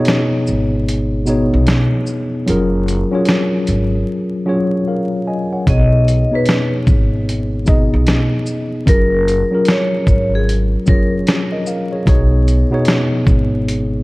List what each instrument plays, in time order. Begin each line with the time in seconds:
Already playing: tine electric piano B2 B3 D#4 G#4 C#5
0.05 snare, closed hi-hat
0.47 upright bass G#1, shaker
0.89 closed hi-hat
1.26 tine electric piano B2 B3 D#4 G#4 C#5, shaker
1.54 upright bass B1
1.67 snare, closed hi-hat
2.07 shaker
2.46 upright bass F#1, tine electric piano F#3 C#4 F4 G#4 A#4, closed hi-hat
2.88 closed hi-hat, shaker
3.11 tine electric piano F#3 C#4 F4 G#4 C#5
3.25 snare, closed hi-hat
3.67 upright bass G#1, closed hi-hat, shaker
4.46 tine electric piano F#3 C#4 F4 G#4 C#5
4.88 tine electric piano A#4 F5
5.27 tine electric piano D#5 G#5
5.53 tine electric piano C#5 F#5
5.66 upright bass B1, tine electric piano B2 B3 D#4 G#4 C#5, vibraphone D#5, kick, closed hi-hat
6.08 closed hi-hat, shaker
6.31 tine electric piano B2 B3 D#4 G#4 C#5
6.35 vibraphone B4
6.46 snare, closed hi-hat
6.87 upright bass G#1, kick, shaker
7.29 closed hi-hat
7.66 tine electric piano B2 B3 D#4 G#4 D#5, kick, shaker
7.94 upright bass B1
8.07 snare, closed hi-hat
8.46 shaker
8.86 upright bass F#1, tine electric piano F#3 C#4 F4 G#4 A#4, vibraphone A#4, kick, closed hi-hat
9.28 closed hi-hat, shaker
9.51 tine electric piano F#3 C#4 F4 G#4 A#4
9.65 snare, closed hi-hat
9.70 vibraphone C#5
10.07 upright bass G#1, kick, shaker
10.35 vibraphone G#4
10.49 closed hi-hat
10.86 upright bass F#1, tine electric piano F#3 C#4 F4 G#4 C#5, vibraphone A#4, kick, shaker
11.27 snare, closed hi-hat
11.52 tine electric piano A#4 D#5
11.67 tine electric piano A#4 F5, shaker
11.92 tine electric piano G#4 C#5
12.05 upright bass B1, tine electric piano B2 B3 D#4 G#4 C#5, kick, closed hi-hat
12.48 closed hi-hat, shaker
12.71 tine electric piano B2 B3 D#4 G#4 C#5
12.85 snare, closed hi-hat
13.27 upright bass G#1, kick, shaker
13.68 closed hi-hat